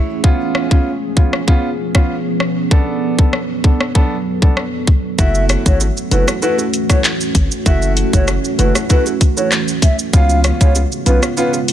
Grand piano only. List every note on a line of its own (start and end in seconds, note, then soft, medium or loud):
0.24 0.67 B3 medium
0.24 0.67 C#4 medium
0.24 0.67 F4 loud
0.71 0.89 B3 medium
0.71 0.89 C#4 medium
0.71 0.89 F4 medium
1.16 1.36 B3 medium
1.16 1.36 C#4 medium
1.16 1.36 F4 medium
1.47 1.67 B3 medium
1.47 1.67 C#4 medium
1.47 1.67 F4 loud
1.95 2.13 B3 medium
1.95 2.13 C#4 medium
1.95 2.13 F4 medium
2.71 3.15 B3 medium
2.71 3.15 D4 medium
2.71 3.15 A4 medium
3.18 3.36 B3 medium
3.18 3.37 D4 medium
3.18 3.37 A4 medium
3.64 3.83 B3 medium
3.64 3.83 D4 medium
3.64 3.84 A4 medium
3.95 4.14 B3 medium
3.95 4.14 D4 medium
3.95 4.15 A4 loud
4.42 4.60 B3 medium
4.42 4.60 D4 medium
4.42 4.60 A4 medium
5.18 5.62 A3 medium
5.18 5.62 E4 medium
5.18 5.62 F#4 loud
5.66 5.84 A3 medium
5.66 5.84 E4 medium
5.66 5.84 F#4 medium
6.11 6.31 A3 medium
6.11 6.31 E4 medium
6.11 6.31 F#4 medium
6.42 6.62 A3 medium
6.42 6.62 E4 medium
6.42 6.62 F#4 loud
6.89 7.08 A3 medium
6.89 7.08 E4 medium
6.89 7.08 F#4 medium
7.66 8.09 A3 medium
7.66 8.09 E4 medium
7.66 8.10 F#4 loud
8.13 8.31 A3 medium
8.13 8.31 E4 medium
8.13 8.32 F#4 medium
8.58 8.78 A3 medium
8.58 8.78 E4 medium
8.58 8.78 F#4 medium
8.89 9.09 A3 loud
8.89 9.09 E4 medium
8.89 9.09 F#4 loud
9.37 9.55 A3 medium
9.37 9.55 E4 medium
9.37 9.55 F#4 medium
10.13 10.57 B3 medium
10.13 10.57 C#4 medium
10.13 10.57 F4 loud
10.60 10.79 B3 medium
10.60 10.79 C#4 medium
10.60 10.79 F4 medium
11.06 11.26 B3 medium
11.06 11.26 C#4 medium
11.06 11.26 F4 medium
11.37 11.57 B3 medium
11.37 11.57 C#4 medium
11.37 11.57 F4 loud